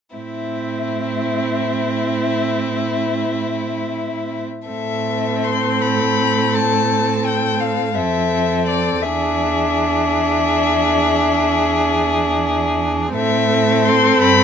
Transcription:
0.16 4.43 A2 soft
0.16 4.43 C4 soft
0.16 4.43 E4 soft
0.16 4.43 E5 soft
4.68 7.99 A2 soft
4.68 7.93 C4 soft
4.68 7.93 A4 soft
4.68 5.46 E5 soft
5.45 5.83 C6 soft
5.82 6.56 B5 soft
6.55 7.27 A5 soft
7.25 7.62 G5 soft
7.60 7.96 F5 soft
7.95 9.04 F2 soft
7.95 9.06 C4 soft
7.95 9.05 A4 soft
7.95 8.66 E5 soft
8.67 9.04 D5 soft
9.03 13.12 E2 soft
9.03 13.14 D4 soft
9.03 13.15 G#4 soft
9.03 12.81 E5 medium
13.15 14.18 A2 medium
13.15 14.44 C4 medium
13.15 14.44 A4 soft
13.15 13.87 E5 medium
13.86 14.21 C6 medium
14.23 14.44 G2 medium
14.23 14.44 B5 medium

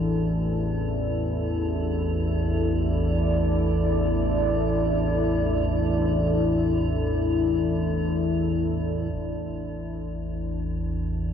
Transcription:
0.00 9.11 A1 medium
0.00 9.10 E2 medium
0.00 9.10 A3 medium
0.00 9.15 D4 medium
0.00 11.33 E4 medium
0.00 11.33 A4 medium
0.00 1.92 C5 medium
1.56 9.14 D5 medium
9.11 11.33 A1 medium
9.11 11.33 E2 medium
9.11 11.33 A3 medium
9.11 taiko medium
9.16 11.33 D4 medium

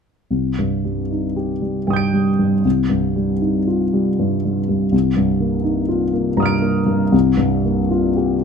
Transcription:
0.31 2.61 C2 soft
0.58 1.00 G2 soft
0.85 1.26 G3 soft
1.11 1.52 D#4 soft
1.36 1.77 G4 soft
1.62 2.03 G3 soft
1.87 2.29 G2 soft
1.87 2.61 G5 soft
1.87 2.62 D#6 soft
1.93 2.64 G6 soft
1.93 2.65 D7 soft
2.13 2.54 G3 soft
2.39 2.65 G2 soft
2.65 4.89 C2 soft
2.89 3.31 G2 soft
3.16 3.57 G3 soft
3.41 3.83 D#4 soft
3.67 4.09 F4 soft
3.93 4.34 G3 soft
4.19 4.59 G2 soft
4.45 4.84 G3 soft
4.69 4.93 G2 soft
4.92 7.09 C2 soft
5.16 5.55 G2 soft
5.40 5.79 A#3 soft
5.64 6.03 D#4 soft
5.89 6.28 F4 soft
6.13 6.53 A#3 soft
6.37 6.77 G2 soft
6.37 7.09 A#5 soft
6.37 7.10 D#6 soft
6.42 7.12 F6 soft
6.42 7.13 D7 soft
6.62 7.03 A#3 soft
6.86 7.13 G2 soft
7.12 8.44 C2 soft
7.37 7.80 G2 soft
7.65 8.07 A#3 soft
7.91 8.34 F4 soft
8.16 8.44 G4 soft

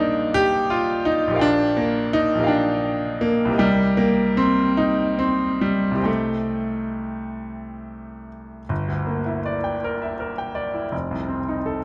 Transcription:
0.00 1.26 A#1 medium
0.00 1.45 A#3 medium
0.00 1.41 D4 medium
0.00 0.35 D#4 medium
0.00 1.32 G#4 soft
0.00 1.34 C5 soft
0.00 1.35 D#5 soft
0.00 1.35 F5 medium
0.34 0.71 G4 loud
0.70 1.06 F4 medium
1.05 1.42 D#4 medium
1.27 2.33 A#1 medium
1.27 2.36 G4 medium
1.34 2.39 A#4 medium
1.34 2.42 F5 medium
1.39 1.78 D4 loud
1.39 2.45 G5 medium
1.77 2.15 A#3 medium
2.13 2.50 D#4 loud
2.35 3.50 A#1 medium
2.35 3.47 G4 soft
2.40 3.50 A#4 medium
2.40 3.54 F5 medium
2.47 3.23 D4 medium
2.47 3.56 G5 medium
3.21 3.60 A#3 medium
3.45 5.90 C2 medium
3.45 5.93 G4 medium
3.52 5.98 A#4 medium
3.52 5.99 D#5 medium
3.58 3.99 G3 loud
3.58 6.01 G5 soft
3.97 4.38 A#3 medium
4.37 4.79 C4 loud
4.77 5.20 D#4 medium
5.19 5.62 C4 medium
5.61 6.06 G3 medium
5.91 8.58 C2 medium
5.91 8.60 G4 soft
5.97 8.61 C5 soft
5.97 8.63 D#5 soft
6.04 8.29 A3 medium
6.04 8.64 G5 soft
8.69 10.89 G1 medium
8.88 9.19 D2 soft
9.07 9.38 A#3 soft
9.26 9.57 E4 medium
9.46 9.76 D5 medium
9.64 9.94 G5 soft
9.84 10.13 A#4 medium
10.02 10.31 E5 soft
10.20 10.49 A#4 medium
10.38 10.67 G5 medium
10.55 10.85 D5 medium
10.74 10.92 E4 soft
10.92 11.84 F1 medium
11.11 11.40 C2 soft
11.28 11.58 C4 soft
11.48 11.76 D#4 medium
11.66 11.84 A4 medium

